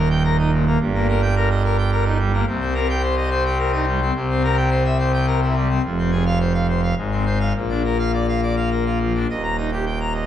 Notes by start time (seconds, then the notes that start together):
Already playing: D#1 D#2
0.10 G5
0.24 A#4
0.38 D#4
0.52 A#2
0.67 A#3
0.80 G1 G2
0.95 A#3
1.09 A#4
1.22 G5
1.36 A#4
1.50 D#5
1.64 A#4
1.78 G5
1.92 A#4
2.05 D#4
2.19 G3
2.33 A#3
2.47 C2 C3
2.61 C4
2.75 A#4
2.89 G5
3.02 C5
3.16 D#5
3.31 C5
3.45 G5
3.59 A#4
3.73 D#4
3.87 G3
4.02 C4
4.15 C2 C3
4.30 C4
4.44 A#4
4.57 G5
4.70 C5
4.85 E5
4.99 C5
5.13 G5
5.27 A#4
5.43 E4
5.56 G3
5.70 C4
5.84 F1 F2
5.98 C4
6.12 G#4
6.26 F5
6.40 C5
6.54 F5
6.68 C5
6.83 F5
6.97 G#1 G#2
7.12 C4
7.25 C5
7.40 F5
7.55 A#1 A#2
7.69 D4
7.85 A#4
7.99 F5
8.14 D5
8.28 F5
8.43 D5
8.57 F5
8.71 A#4
8.86 F4
8.99 F3
9.15 D4
9.29 D#1 D#2 D#5
9.43 A#5
9.58 D#4 D#5
9.72 G4
9.86 G5
10.00 A#5
10.14 D#5